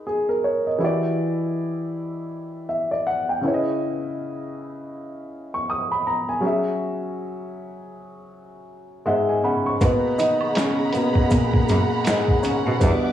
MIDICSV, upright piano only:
0, 0, Header, 1, 2, 480
1, 0, Start_track
1, 0, Tempo, 750000
1, 518, Time_signature, 4, 2, 24, 8
1, 8399, End_track
2, 0, Start_track
2, 0, Title_t, "Upright piano"
2, 0, Program_c, 0, 0
2, 0, Control_c, 0, 64, 127
2, 0, Note_on_c, 0, 56, 65
2, 0, Note_on_c, 0, 63, 65
2, 0, Note_on_c, 0, 66, 59
2, 42, Note_on_c, 0, 68, 58
2, 175, Note_off_c, 0, 68, 0
2, 184, Note_on_c, 0, 70, 61
2, 275, Note_off_c, 0, 70, 0
2, 283, Note_on_c, 0, 73, 59
2, 416, Note_off_c, 0, 73, 0
2, 428, Note_on_c, 0, 75, 52
2, 486, Note_off_c, 0, 56, 0
2, 490, Note_off_c, 0, 63, 0
2, 495, Note_off_c, 0, 66, 0
2, 502, Note_on_c, 0, 52, 64
2, 512, Note_on_c, 0, 64, 62
2, 521, Note_on_c, 0, 66, 60
2, 526, Control_c, 0, 64, 0
2, 531, Note_on_c, 0, 67, 61
2, 541, Note_on_c, 0, 74, 76
2, 643, Control_c, 0, 64, 127
2, 652, Note_off_c, 0, 75, 0
2, 1706, Note_off_c, 0, 74, 0
2, 1721, Note_on_c, 0, 76, 57
2, 1855, Note_off_c, 0, 76, 0
2, 1865, Note_on_c, 0, 74, 62
2, 1955, Note_off_c, 0, 74, 0
2, 1963, Note_on_c, 0, 78, 64
2, 2096, Note_off_c, 0, 78, 0
2, 2107, Note_on_c, 0, 79, 54
2, 2165, Note_off_c, 0, 52, 0
2, 2170, Note_off_c, 0, 64, 0
2, 2174, Note_off_c, 0, 66, 0
2, 2179, Note_off_c, 0, 67, 0
2, 2183, Note_on_c, 0, 49, 69
2, 2194, Note_on_c, 0, 61, 58
2, 2204, Note_on_c, 0, 64, 61
2, 2207, Control_c, 0, 64, 0
2, 2214, Note_on_c, 0, 71, 60
2, 2223, Note_on_c, 0, 73, 60
2, 2260, Note_off_c, 0, 73, 0
2, 2266, Note_on_c, 0, 75, 76
2, 2310, Control_c, 0, 64, 127
2, 2332, Note_off_c, 0, 79, 0
2, 3546, Note_on_c, 0, 85, 54
2, 3636, Note_off_c, 0, 85, 0
2, 3645, Note_on_c, 0, 87, 62
2, 3777, Note_off_c, 0, 87, 0
2, 3786, Note_on_c, 0, 83, 65
2, 3876, Note_off_c, 0, 83, 0
2, 3884, Note_on_c, 0, 82, 64
2, 4017, Note_off_c, 0, 82, 0
2, 4024, Note_on_c, 0, 80, 58
2, 4085, Note_off_c, 0, 49, 0
2, 4091, Note_off_c, 0, 61, 0
2, 4096, Note_off_c, 0, 64, 0
2, 4100, Note_on_c, 0, 54, 61
2, 4101, Note_off_c, 0, 71, 0
2, 4110, Note_on_c, 0, 61, 60
2, 4120, Note_on_c, 0, 68, 61
2, 4126, Note_off_c, 0, 75, 0
2, 4126, Control_c, 0, 64, 0
2, 4130, Note_on_c, 0, 66, 62
2, 4139, Note_on_c, 0, 76, 67
2, 4229, Control_c, 0, 64, 127
2, 4251, Note_off_c, 0, 80, 0
2, 5792, Note_off_c, 0, 76, 0
2, 5796, Note_on_c, 0, 56, 79
2, 5801, Note_on_c, 0, 78, 60
2, 5802, Note_on_c, 0, 76, 68
2, 5807, Note_on_c, 0, 44, 58
2, 5850, Note_off_c, 0, 56, 0
2, 5860, Note_off_c, 0, 44, 0
2, 5935, Note_off_c, 0, 78, 0
2, 5945, Note_on_c, 0, 80, 57
2, 6004, Note_off_c, 0, 54, 0
2, 6008, Note_off_c, 0, 61, 0
2, 6014, Note_off_c, 0, 68, 0
2, 6018, Note_off_c, 0, 66, 0
2, 6023, Note_off_c, 0, 76, 0
2, 6036, Note_off_c, 0, 80, 0
2, 6037, Note_on_c, 0, 61, 70
2, 6043, Note_on_c, 0, 78, 60
2, 6043, Note_on_c, 0, 83, 61
2, 6048, Note_on_c, 0, 49, 51
2, 6176, Note_off_c, 0, 83, 0
2, 6183, Note_on_c, 0, 85, 56
2, 6261, Note_off_c, 0, 61, 0
2, 6264, Note_off_c, 0, 78, 0
2, 6267, Note_off_c, 0, 49, 0
2, 6277, Note_on_c, 0, 59, 84
2, 6279, Note_on_c, 0, 58, 50
2, 6286, Control_c, 0, 64, 0
2, 6287, Note_on_c, 0, 66, 65
2, 6288, Note_on_c, 0, 47, 69
2, 6410, Note_off_c, 0, 85, 0
2, 6416, Control_c, 0, 64, 127
2, 6507, Note_off_c, 0, 47, 0
2, 6517, Note_on_c, 0, 63, 87
2, 6528, Note_on_c, 0, 51, 62
2, 6741, Note_off_c, 0, 63, 0
2, 6747, Note_off_c, 0, 51, 0
2, 6757, Note_on_c, 0, 61, 90
2, 6770, Note_on_c, 0, 49, 73
2, 6973, Note_off_c, 0, 58, 0
2, 6975, Note_off_c, 0, 59, 0
2, 6977, Note_off_c, 0, 66, 0
2, 6981, Note_off_c, 0, 61, 0
2, 6988, Note_off_c, 0, 49, 0
2, 6996, Note_on_c, 0, 59, 76
2, 7000, Note_on_c, 0, 58, 49
2, 7006, Note_on_c, 0, 66, 59
2, 7008, Note_on_c, 0, 47, 70
2, 7215, Note_off_c, 0, 58, 0
2, 7217, Note_off_c, 0, 59, 0
2, 7218, Note_off_c, 0, 66, 0
2, 7227, Note_off_c, 0, 47, 0
2, 7234, Note_on_c, 0, 58, 89
2, 7246, Note_on_c, 0, 46, 71
2, 7691, Note_off_c, 0, 58, 0
2, 7697, Note_off_c, 0, 46, 0
2, 7715, Note_on_c, 0, 56, 81
2, 7726, Note_on_c, 0, 44, 66
2, 7946, Note_off_c, 0, 44, 0
2, 7954, Note_on_c, 0, 61, 82
2, 7964, Note_off_c, 0, 56, 0
2, 7965, Note_on_c, 0, 49, 65
2, 8185, Note_off_c, 0, 49, 0
2, 8192, Note_on_c, 0, 59, 88
2, 8196, Note_on_c, 0, 55, 57
2, 8199, Note_on_c, 0, 62, 54
2, 8203, Note_off_c, 0, 61, 0
2, 8204, Note_on_c, 0, 47, 66
2, 8204, Note_on_c, 0, 66, 62
2, 8206, Control_c, 0, 64, 0
2, 8307, Control_c, 0, 64, 127
2, 8399, Note_off_c, 0, 47, 0
2, 8399, Note_off_c, 0, 55, 0
2, 8399, Note_off_c, 0, 59, 0
2, 8399, Note_off_c, 0, 62, 0
2, 8399, Note_off_c, 0, 66, 0
2, 8399, End_track
0, 0, End_of_file